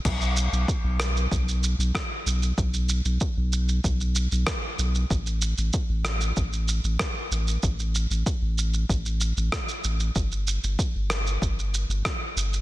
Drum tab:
CC |x---------------|----------------|----------------|----------------|
SH |xxxxx-xxxxxxx-xx|xxxxx-xxxxxxx-xx|xxxxx-xxxxxxx-xx|xxxxx-xxxxxxxxxx|
SD |------r-----r---|------------r---|------r-----r---|------------r---|
BD |o---o---o---o---|o---o---o---o---|o---o---o---o---|o---o---o---o---|

CC |----------------|
SH |xxxxx-xxxxxxx-xx|
SD |------r-----r---|
BD |o---o---o---o---|